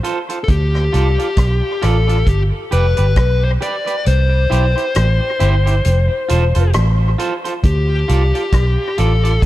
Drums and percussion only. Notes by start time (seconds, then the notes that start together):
0.04 closed hi-hat
0.29 closed hi-hat
0.48 kick, closed hi-hat
0.75 cross-stick
0.94 closed hi-hat
1.19 closed hi-hat
1.37 kick, cross-stick, closed hi-hat
1.82 cross-stick, closed hi-hat
2.09 closed hi-hat
2.27 kick, closed hi-hat
2.72 closed hi-hat
2.97 closed hi-hat
3.16 kick, cross-stick, closed hi-hat
3.62 closed hi-hat
3.87 closed hi-hat
4.06 closed hi-hat
4.52 closed hi-hat
4.77 closed hi-hat
4.95 cross-stick, closed hi-hat
5.40 closed hi-hat
5.67 closed hi-hat
5.85 closed hi-hat
6.29 closed hi-hat
6.55 closed hi-hat
6.73 cross-stick, closed hi-hat
7.19 closed hi-hat
7.45 closed hi-hat
7.64 kick, closed hi-hat
8.09 closed hi-hat
8.35 closed hi-hat
8.52 kick, cross-stick, closed hi-hat
8.98 closed hi-hat
9.25 closed hi-hat
9.42 kick, closed hi-hat